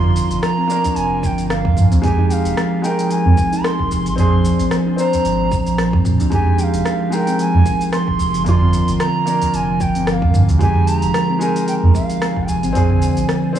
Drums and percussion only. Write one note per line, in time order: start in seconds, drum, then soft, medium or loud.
0.04 mid tom medium
0.16 open hi-hat medium
0.16 shaker medium
0.31 open hi-hat soft
0.31 shaker soft
0.43 cross-stick loud
0.43 open hi-hat medium
0.43 shaker soft
0.70 open hi-hat soft
0.70 shaker medium
0.84 open hi-hat soft
0.84 udu medium
0.84 shaker medium
0.96 open hi-hat medium
0.96 shaker soft
1.23 kick loud
1.23 open hi-hat soft
1.23 shaker medium
1.38 open hi-hat soft
1.38 shaker soft
1.50 cross-stick loud
1.50 open hi-hat medium
1.50 shaker soft
1.65 kick loud
1.77 kick medium
1.77 mid tom medium
1.77 open hi-hat soft
1.77 shaker medium
1.92 open hi-hat soft
1.92 udu medium
1.92 shaker soft
2.03 kick loud
2.03 mid tom medium
2.03 open hi-hat medium
2.03 shaker soft
2.18 mid tom medium
2.30 open hi-hat medium
2.30 shaker medium
2.45 open hi-hat soft
2.45 shaker soft
2.57 cross-stick loud
2.57 open hi-hat medium
2.57 shaker soft
2.84 open hi-hat soft
2.84 shaker medium
2.99 open hi-hat soft
2.99 shaker medium
3.11 open hi-hat medium
3.11 shaker soft
3.37 kick loud
3.37 open hi-hat soft
3.37 shaker medium
3.52 open hi-hat soft
3.52 shaker soft
3.64 cross-stick loud
3.64 open hi-hat medium
3.64 shaker soft
3.79 kick medium
3.91 open hi-hat soft
3.91 udu loud
3.91 shaker medium
4.06 open hi-hat soft
4.06 shaker soft
4.18 mid tom medium
4.18 open hi-hat medium
4.18 shaker soft
4.33 mid tom medium
4.45 open hi-hat soft
4.45 shaker medium
4.59 open hi-hat soft
4.59 shaker soft
4.71 cross-stick loud
4.71 open hi-hat medium
4.71 shaker soft
4.98 open hi-hat soft
4.98 shaker medium
5.13 open hi-hat soft
5.13 udu medium
5.13 shaker soft
5.25 open hi-hat soft
5.25 shaker soft
5.52 kick loud
5.52 open hi-hat soft
5.52 shaker medium
5.66 open hi-hat soft
5.66 shaker soft
5.78 cross-stick loud
5.78 open hi-hat medium
5.78 shaker soft
5.93 kick loud
6.05 kick medium
6.05 mid tom medium
6.05 open hi-hat soft
6.05 shaker medium
6.20 open hi-hat soft
6.20 udu loud
6.20 shaker soft
6.32 kick loud
6.32 mid tom medium
6.32 open hi-hat soft
6.32 shaker soft
6.47 mid tom medium
6.58 open hi-hat soft
6.58 shaker medium
6.74 open hi-hat soft
6.74 shaker soft
6.86 cross-stick medium
6.86 open hi-hat medium
6.86 shaker soft
7.12 open hi-hat soft
7.12 shaker medium
7.27 open hi-hat soft
7.27 shaker medium
7.39 open hi-hat soft
7.39 shaker soft
7.66 kick loud
7.66 open hi-hat soft
7.66 shaker medium
7.81 open hi-hat soft
7.81 shaker soft
7.93 cross-stick loud
7.93 open hi-hat medium
7.93 shaker soft
8.08 kick medium
8.19 open hi-hat soft
8.19 udu loud
8.19 shaker medium
8.34 open hi-hat soft
8.34 shaker soft
8.46 mid tom medium
8.46 open hi-hat medium
8.46 shaker soft
8.61 mid tom medium
8.73 open hi-hat medium
8.73 shaker medium
8.88 open hi-hat soft
8.88 shaker soft
9.00 cross-stick loud
9.00 open hi-hat medium
9.00 shaker soft
9.27 open hi-hat soft
9.27 shaker medium
9.41 open hi-hat soft
9.41 udu medium
9.41 shaker soft
9.54 open hi-hat medium
9.54 shaker soft
9.80 kick loud
9.80 open hi-hat soft
9.80 shaker medium
9.95 open hi-hat soft
9.95 shaker soft
10.07 cross-stick loud
10.07 open hi-hat medium
10.07 shaker soft
10.22 kick loud
10.34 kick medium
10.34 mid tom medium
10.34 open hi-hat soft
10.34 shaker medium
10.48 open hi-hat soft
10.48 udu medium
10.48 shaker soft
10.61 kick loud
10.61 mid tom medium
10.61 open hi-hat medium
10.61 shaker soft
10.76 mid tom medium
10.87 open hi-hat medium
10.87 shaker medium
11.02 open hi-hat soft
11.02 shaker soft
11.14 cross-stick loud
11.14 open hi-hat medium
11.14 shaker soft
11.41 open hi-hat soft
11.41 shaker medium
11.56 open hi-hat soft
11.56 shaker soft
11.68 open hi-hat medium
11.68 shaker soft
11.95 kick medium
11.95 open hi-hat soft
11.95 shaker medium
12.10 open hi-hat soft
12.10 shaker soft
12.22 cross-stick loud
12.22 open hi-hat medium
12.22 shaker soft
12.36 kick medium
12.48 open hi-hat soft
12.48 udu medium
12.48 shaker medium
12.63 open hi-hat soft
12.63 shaker soft
12.75 mid tom medium
12.75 open hi-hat medium
12.75 shaker soft
12.90 mid tom medium
13.02 open hi-hat soft
13.02 shaker medium
13.17 open hi-hat soft
13.17 shaker soft
13.29 cross-stick loud
13.29 open hi-hat medium
13.29 shaker soft
13.55 open hi-hat soft
13.55 shaker medium